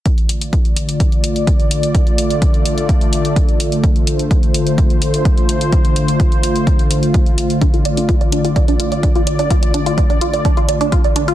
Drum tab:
HH |xxxxxxxxxxxxxxxx|xxxxxxxxxxxxxxxx|xxxxxxxxxxxxxxxx|xxxxxxxxxxxxxxxx|
BD |o---o---o---o---|o---o---o---o---|o---o---o---o---|o---o---o---o---|

HH |xxxxxxxxxxxxxxxx|xxxxxxxxxxxxxxxx|
BD |o---o---o---o---|o---o---o---o---|